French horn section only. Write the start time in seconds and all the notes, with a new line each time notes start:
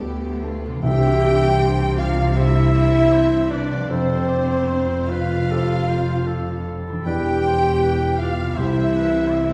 Already playing: G3 B3
0.84 G4
1.98 F4
2.37 E4
3.50 D4
3.90 C4
5.09 F4
7.03 G4
8.18 F4
8.55 E4